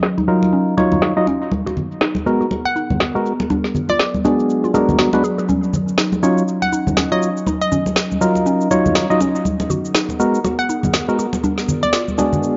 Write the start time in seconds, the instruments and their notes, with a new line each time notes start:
Already playing: ambient pad F#3 C#4 D#4 D#5, synth pluck D#5
0.03 snare, shaker
0.18 synth arpeggio sound D#4, high conga, shaker
0.28 synth stab F#3 D#4 F4 A#4, shaker
0.43 muted conga
0.53 synth arpeggio sound C#4, shaker
0.68 shaker
0.77 synth stab F#3 D#4 F4 C#5, muted conga, shaker
0.92 synth arpeggio sound D#4, high conga, low conga, shaker
1.02 snare, shaker
1.17 synth stab F#3 D#4 F4 D#5, shaker
1.27 synth arpeggio sound C#4, muted conga, shaker
1.42 shaker
1.52 ambient pad B3 G#4 A#4 F#5, high conga, shaker
1.66 synth arpeggio sound F#4, muted conga, shaker
1.77 low conga, shaker
1.92 shaker
2.01 synth arpeggio sound D#4, snare, shaker
2.15 muted conga, high conga, shaker
2.26 synth stab G#3 B3 F#4 A#4, shaker
2.41 synth arpeggio sound F#4, shaker
2.51 muted conga, shaker
2.65 synth pluck F#5
2.76 synth arpeggio sound D#4, shaker
2.90 high conga, low conga, shaker
3.00 snare, muted conga, shaker
3.15 synth stab G#3 B3 F#4 A#4, synth arpeggio sound F#4, shaker
3.26 shaker
3.40 muted conga, shaker
3.50 ambient pad F#3 D5, synth arpeggio sound D4, high conga, shaker
3.64 snare, shaker
3.75 low conga, shaker
3.89 synth arpeggio sound F4, synth pluck D5, muted conga, shaker
3.99 snare, shaker
4.14 high conga, shaker
4.24 synth stab G#3 B3 D4 F#4 G#4, synth arpeggio sound D4, muted conga, shaker
4.40 shaker
4.50 shaker
4.64 synth arpeggio sound F4, shaker
4.74 synth stab G#3 B3 D4 F#4 A#4, synth arpeggio sound G#4, muted conga, shaker
4.89 high conga, low conga, shaker
4.99 synth arpeggio sound F#4, snare, shaker
5.13 synth stab G#3 B3 D4 F#4 B4, muted conga, shaker
5.24 synth arpeggio sound G#4, shaker
5.38 synth arpeggio sound G#4, shaker
5.49 synth arpeggio sound C#4, ambient pad C#4 D#4 D#5, high conga, shaker
5.63 shaker
5.73 muted conga, low conga, shaker
5.88 shaker
5.98 synth arpeggio sound D#4, snare, shaker
6.12 muted conga, high conga, shaker
6.23 synth stab F#3 D#4 F4 C#5, synth arpeggio sound C#4, shaker
6.38 shaker
6.48 shaker
6.62 synth pluck F#5, muted conga, shaker
6.73 synth arpeggio sound D#4, shaker
6.87 high conga, low conga, shaker
6.97 synth arpeggio sound C#4, snare, muted conga, shaker
7.12 synth stab F#3 D#4 F4 C#5, synth pluck D#5, shaker
7.23 shaker
7.37 shaker
7.47 synth arpeggio sound D#4, muted conga, high conga, shaker
7.61 synth pluck D#5, shaker
7.72 synth arpeggio sound C#4, low conga, shaker
7.86 muted conga, shaker
7.96 snare, shaker
8.11 high conga, shaker
8.21 synth stab F#3 D#4 F4 A#4, synth arpeggio sound D#4, shaker
8.35 muted conga, shaker
8.46 synth arpeggio sound C#4, shaker
8.61 shaker
8.71 synth stab F#3 D#4 F4 C#5, muted conga, shaker
8.86 high conga, low conga, shaker
8.95 synth arpeggio sound D#4, snare, shaker
9.10 synth stab F#3 D#4 F4 D#5, shaker
9.20 synth arpeggio sound C#4, muted conga, shaker
9.35 shaker
9.45 ambient pad B3 G#4 A#4 F#5, high conga, shaker
9.60 muted conga, shaker
9.70 synth arpeggio sound F#4, low conga, shaker
9.85 shaker
9.95 synth arpeggio sound D#4, snare, shaker
10.09 muted conga, high conga, shaker
10.20 synth stab G#3 B3 F#4 A#4, shaker
10.35 shaker
10.44 synth arpeggio sound F#4, muted conga, shaker
10.59 synth pluck F#5, shaker
10.69 synth arpeggio sound D#4, shaker
10.83 high conga, low conga, shaker
10.93 snare, muted conga, shaker
11.08 synth stab G#3 B3 F#4 A#4, shaker
11.19 synth arpeggio sound F#4, shaker
11.33 muted conga, shaker
11.43 synth arpeggio sound D4, ambient pad F#4 D5, high conga, shaker
11.58 snare, shaker
11.68 low conga, shaker
11.83 synth pluck D5, muted conga, shaker
11.93 synth arpeggio sound F4, snare, shaker
12.08 high conga, shaker
12.18 synth stab G#3 B3 D4 F#4 G#4, synth arpeggio sound D4, muted conga, shaker
12.33 low conga, shaker
12.43 shaker